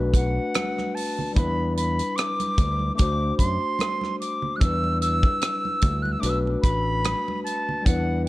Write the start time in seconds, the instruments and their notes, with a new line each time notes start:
Already playing: fingered electric bass B1, tine electric piano A3 D4 F#4 B4
0.14 flute F#5, kick, closed hi-hat
0.54 cross-stick, closed hi-hat, high conga
0.78 cross-stick, high conga
0.95 flute A5, open hi-hat
1.19 low conga
1.33 fingered electric bass E2, tine electric piano G3 D4, flute B5, kick
1.37 tine electric piano E4 B4, closed hi-hat, low conga
1.77 flute B5, closed hi-hat
1.99 closed hi-hat
2.16 flute D6, cross-stick, closed hi-hat
2.40 closed hi-hat, high conga
2.58 fingered electric bass D2, kick, closed hi-hat, low conga
2.79 high conga
2.95 tine electric piano A3 D4, flute D6, closed hi-hat, muted conga
2.99 fingered electric bass D2, tine electric piano F#4 C5, kick
3.38 fingered electric bass F#2, flute C6, kick, closed hi-hat
3.79 cross-stick, closed hi-hat, muted conga, high conga
4.01 cross-stick, high conga
4.20 flute D6, closed hi-hat
4.42 low conga
4.56 tine electric piano G3, flute E6 F#6
4.60 fingered electric bass E2, tine electric piano D4 E4, kick, closed hi-hat, low conga
4.65 tine electric piano B4
4.84 muted conga
5.01 flute E6, closed hi-hat
5.23 kick
5.41 cross-stick, closed hi-hat, muted conga
5.65 muted conga, high conga
5.81 fingered electric bass D2, kick, closed hi-hat, low conga
6.02 flute F#6, high conga
6.12 flute E6
6.19 tine electric piano A3 D4, flute D6, closed hi-hat
6.23 fingered electric bass B1, tine electric piano F#4 B4, muted conga
6.29 flute E6
6.47 muted conga
6.62 fingered electric bass A1, flute B5, kick, closed hi-hat
7.04 cross-stick, closed hi-hat, muted conga, high conga
7.28 muted conga, high conga
7.44 flute A5, closed hi-hat
7.69 low conga
7.82 tine electric piano G3 D4, flute F#5, kick, muted conga, low conga
7.87 fingered electric bass E2, tine electric piano E4 B4, closed hi-hat